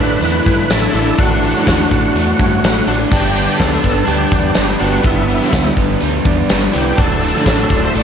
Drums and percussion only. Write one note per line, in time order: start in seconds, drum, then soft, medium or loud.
0.22 closed hi-hat loud
0.22 shaker medium
0.44 kick medium
0.44 closed hi-hat medium
0.44 shaker loud
0.58 shaker soft
0.68 snare loud
0.68 closed hi-hat loud
0.68 tambourine loud
0.68 shaker medium
0.93 closed hi-hat medium
0.93 shaker medium
1.18 kick loud
1.18 closed hi-hat loud
1.18 shaker medium
1.40 closed hi-hat medium
1.40 shaker loud
1.57 snare soft
1.65 kick medium
1.65 snare loud
1.65 closed hi-hat medium
1.65 tambourine loud
1.65 shaker medium
1.90 kick medium
1.90 closed hi-hat medium
1.90 shaker loud
2.02 shaker soft
2.15 closed hi-hat loud
2.15 shaker medium
2.39 kick medium
2.39 closed hi-hat medium
2.39 shaker loud
2.53 shaker soft
2.64 snare loud
2.64 closed hi-hat loud
2.64 tambourine loud
2.64 shaker medium
2.88 closed hi-hat medium
2.88 shaker medium
3.12 kick loud
3.12 crash loud
3.12 shaker medium
3.35 closed hi-hat medium
3.35 shaker medium
3.60 kick medium
3.60 snare loud
3.60 closed hi-hat loud
3.60 tambourine loud
3.60 shaker medium
3.84 kick medium
3.84 closed hi-hat medium
3.84 shaker loud
4.07 closed hi-hat loud
4.07 shaker medium
4.31 kick medium
4.31 closed hi-hat medium
4.31 shaker loud
4.47 shaker soft
4.55 snare loud
4.55 closed hi-hat loud
4.55 tambourine loud
4.55 shaker medium
4.80 closed hi-hat medium
4.80 shaker loud
5.03 kick loud
5.03 closed hi-hat loud
5.03 shaker medium
5.28 closed hi-hat medium
5.28 shaker loud
5.41 snare soft
5.53 kick medium
5.53 snare loud
5.53 closed hi-hat loud
5.53 tambourine loud
5.53 shaker medium
5.77 kick medium
5.77 closed hi-hat medium
5.77 shaker loud
6.01 closed hi-hat loud
6.01 shaker medium
6.25 kick medium
6.25 closed hi-hat medium
6.25 shaker medium
6.39 shaker soft
6.49 snare loud
6.49 closed hi-hat loud
6.49 tambourine loud
6.49 shaker medium
6.75 closed hi-hat medium
6.75 shaker loud
6.98 kick loud
6.98 closed hi-hat loud
6.98 shaker medium
7.23 closed hi-hat medium
7.23 shaker loud
7.35 snare soft
7.35 shaker soft
7.46 kick medium
7.46 snare loud
7.46 closed hi-hat loud
7.46 tambourine loud
7.46 shaker medium
7.69 kick medium
7.69 closed hi-hat medium
7.69 shaker loud
7.94 closed hi-hat loud
7.94 shaker medium